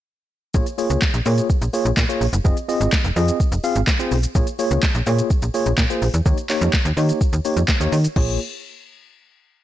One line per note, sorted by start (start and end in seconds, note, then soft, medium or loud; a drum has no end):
0.54 0.62 A#1 loud
0.54 0.65 A#3 medium
0.54 0.65 F4 medium
0.54 0.65 G#4 medium
0.54 0.65 C#5 loud
0.54 kick loud
0.54 shaker medium
0.66 closed hi-hat medium
0.66 shaker medium
0.78 1.00 A#3 medium
0.78 1.00 F4 medium
0.78 1.00 G#4 medium
0.78 1.00 C#5 medium
0.78 open hi-hat medium
0.78 shaker medium
0.90 0.97 C#2 medium
0.90 closed hi-hat medium
0.90 shaker medium
1.02 kick loud
1.02 snare medium
1.02 clap loud
1.02 shaker medium
1.14 1.21 A#1 loud
1.14 closed hi-hat medium
1.14 shaker medium
1.26 1.41 A#2 loud
1.26 1.47 A#3 medium
1.26 1.47 F4 medium
1.26 1.47 G#4 medium
1.26 1.48 C#5 medium
1.26 open hi-hat medium
1.26 shaker medium
1.38 closed hi-hat medium
1.38 shaker medium
1.50 kick loud
1.50 shaker medium
1.62 1.69 A#1 medium
1.62 closed hi-hat medium
1.62 shaker medium
1.73 1.89 A#3 medium
1.73 1.90 F4 medium
1.73 1.90 G#4 medium
1.73 1.90 C#5 medium
1.73 open hi-hat medium
1.73 shaker medium
1.85 1.93 A#1 medium
1.85 closed hi-hat medium
1.85 shaker medium
1.97 2.04 A#2 loud
1.97 kick loud
1.97 snare medium
1.97 clap loud
1.97 shaker loud
2.09 2.25 A#3 medium
2.09 2.25 F4 medium
2.09 2.25 G#4 medium
2.09 2.25 C#5 loud
2.09 closed hi-hat medium
2.09 shaker medium
2.21 2.28 A#1 medium
2.21 open hi-hat medium
2.21 shaker medium
2.33 2.40 F#1 loud
2.33 closed hi-hat medium
2.33 shaker medium
2.44 2.52 F1 loud
2.44 2.55 C4 medium
2.44 2.56 F4 medium
2.44 2.56 G#4 medium
2.44 2.56 D#5 medium
2.44 kick loud
2.44 shaker medium
2.57 closed hi-hat medium
2.57 shaker medium
2.68 2.90 C4 medium
2.68 2.90 F4 medium
2.68 2.90 G#4 medium
2.68 2.90 D#5 medium
2.68 open hi-hat medium
2.68 shaker medium
2.81 2.88 G#1 medium
2.81 closed hi-hat medium
2.81 shaker medium
2.92 kick loud
2.92 snare medium
2.92 clap loud
2.92 shaker medium
3.04 3.12 F1 loud
3.04 closed hi-hat soft
3.04 shaker medium
3.16 3.31 F2 loud
3.16 3.38 C4 medium
3.16 3.38 F4 medium
3.16 3.38 G#4 medium
3.16 3.38 D#5 medium
3.16 open hi-hat medium
3.16 shaker medium
3.28 closed hi-hat medium
3.28 shaker medium
3.40 kick loud
3.40 shaker medium
3.52 3.59 F1 loud
3.52 closed hi-hat medium
3.52 shaker medium
3.64 3.80 C4 medium
3.64 3.80 F4 medium
3.64 3.80 G#4 medium
3.64 3.80 F5 medium
3.64 open hi-hat medium
3.64 shaker medium
3.76 3.83 G#1 medium
3.76 closed hi-hat medium
3.76 shaker medium
3.87 kick loud
3.87 snare medium
3.87 clap loud
3.87 shaker loud
3.99 4.16 C4 medium
3.99 4.16 F4 medium
3.99 4.16 G#4 medium
3.99 4.16 C5 loud
3.99 closed hi-hat medium
3.99 shaker medium
4.12 4.26 B1 medium
4.12 open hi-hat medium
4.12 shaker medium
4.23 closed hi-hat medium
4.23 shaker medium
4.35 4.43 A#1 loud
4.35 4.46 A#3 medium
4.35 4.46 F4 medium
4.35 4.46 G#4 medium
4.35 4.46 C#5 medium
4.35 kick loud
4.35 shaker medium
4.47 closed hi-hat medium
4.47 shaker medium
4.59 4.81 A#3 medium
4.59 4.81 F4 medium
4.59 4.81 G#4 medium
4.59 4.81 C#5 loud
4.59 open hi-hat medium
4.59 shaker medium
4.71 4.78 C#2 medium
4.71 closed hi-hat medium
4.71 shaker medium
4.83 kick loud
4.83 snare medium
4.83 clap loud
4.83 shaker medium
4.95 5.02 A#1 loud
4.95 closed hi-hat medium
4.95 shaker soft
5.06 5.21 A#2 loud
5.06 5.28 A#3 medium
5.06 5.28 F4 medium
5.06 5.28 G#4 medium
5.06 5.28 C#5 medium
5.06 open hi-hat medium
5.06 shaker medium
5.19 closed hi-hat medium
5.19 shaker medium
5.30 kick loud
5.30 shaker medium
5.42 5.50 A#1 medium
5.42 closed hi-hat medium
5.42 shaker medium
5.54 5.70 A#3 medium
5.54 5.70 F4 medium
5.54 5.71 G#4 medium
5.54 5.71 C#5 medium
5.54 open hi-hat medium
5.54 shaker medium
5.66 5.74 A#1 medium
5.66 closed hi-hat medium
5.66 shaker medium
5.78 5.85 A#2 loud
5.78 kick loud
5.78 snare loud
5.78 clap loud
5.78 shaker medium
5.90 6.06 A#3 medium
5.90 6.06 F4 medium
5.90 6.06 G#4 medium
5.90 6.06 C5 medium
5.90 closed hi-hat medium
5.90 shaker medium
6.02 6.09 A#1 medium
6.02 open hi-hat medium
6.02 shaker medium
6.14 6.21 E2 medium
6.14 closed hi-hat medium
6.14 shaker medium
6.25 6.33 D#2 loud
6.25 6.36 A#3 medium
6.25 6.36 D#4 medium
6.25 6.37 G4 medium
6.25 6.37 C#5 medium
6.25 kick loud
6.25 shaker medium
6.38 closed hi-hat medium
6.38 shaker medium
6.49 6.71 A#3 medium
6.49 6.71 D#4 medium
6.49 6.71 G4 medium
6.49 6.71 C#5 medium
6.49 clap medium
6.49 open hi-hat medium
6.49 shaker medium
6.61 6.69 F2 loud
6.61 closed hi-hat medium
6.61 shaker medium
6.73 kick loud
6.73 snare medium
6.73 clap loud
6.73 shaker medium
6.85 6.93 D#2 loud
6.85 closed hi-hat medium
6.85 shaker soft
6.97 7.12 D#3 loud
6.97 7.19 A#3 medium
6.97 7.19 D#4 medium
6.97 7.19 G4 medium
6.97 7.19 C#5 medium
6.97 open hi-hat medium
6.97 shaker medium
7.09 closed hi-hat medium
7.09 shaker medium
7.21 kick loud
7.21 shaker medium
7.33 7.40 D#2 loud
7.33 closed hi-hat medium
7.33 shaker medium
7.45 7.61 A#3 medium
7.45 7.61 D#4 medium
7.45 7.61 G4 medium
7.45 7.61 C#5 medium
7.45 open hi-hat medium
7.45 shaker medium
7.57 7.64 F2 medium
7.57 closed hi-hat medium
7.57 shaker medium
7.68 kick loud
7.68 snare loud
7.68 clap loud
7.68 shaker loud
7.80 7.88 D#2 medium
7.80 7.97 A#3 medium
7.80 7.97 D#4 medium
7.80 7.97 G4 medium
7.80 7.97 C#5 medium
7.80 closed hi-hat medium
7.80 shaker medium
7.92 8.07 D#3 loud
7.92 open hi-hat medium
7.92 shaker medium
8.04 closed hi-hat medium
8.04 shaker medium
8.16 8.38 A#1 medium
8.16 8.39 A#3 medium
8.16 8.39 F4 medium
8.16 8.39 G#4 medium
8.16 8.39 C#5 medium
8.16 kick loud
8.16 crash medium